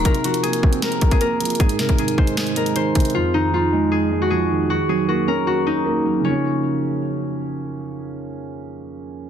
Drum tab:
HH |x-x-x-x-x-x---x-x-x-x-x-x---xxxx|x-x-x-x-x-x---x-x-x-x-x-x---xxxx|--------------------------------|--------------------------------|
SD |----------------o---------------|----o-----------o---------------|--------------------------------|--------------------------------|
BD |o-----------o-------o-o---------|o-----o-----o---------------o---|--------------------------------|--------------------------------|

HH |--------------------------------|--------------------------------|
SD |--------------------------------|--------------------------------|
BD |--------------------------------|--------------------------------|